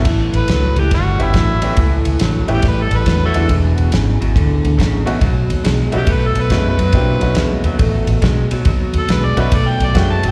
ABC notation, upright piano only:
X:1
M:4/4
L:1/8
Q:"Swing" 1/4=139
K:Bdor
V:1 name="Upright piano"
z4 z [A,B,CE=G] z [A,B,CEG] | z3 [A,B,CE=G] z3 [^G,B,DEF]- | [G,B,DEF]2 z4 z [A,B,C^DF] | z3 [A,B,C^DF] z2 [A,B,CDF] z |
[^A,=CDE=G] [=A,B,^C^DF]4 z3 | z3 [A,B,C^DF] z2 [A,B,CDF] z |]